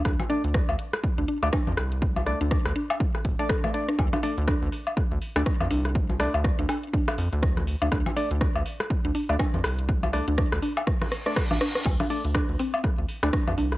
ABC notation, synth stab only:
X:1
M:4/4
L:1/16
Q:"Swing 16ths" 1/4=122
K:Dm
V:1 name="Synth stab"
z2 [A,Dd] z8 [A,Dd] z4 | z2 [A,Dd] z8 [A,Dd] z2 [A,Dd] z | z2 [A,Dd] z8 [A,Dd] z4 | z2 [A,Dd] z12 z |
z2 [A,Dd] z8 [A,Dd] z4 | z2 [A,Dd] z8 [A,Dd] z4 | z2 [A,Dd] z8 [A,Dd] z4 |]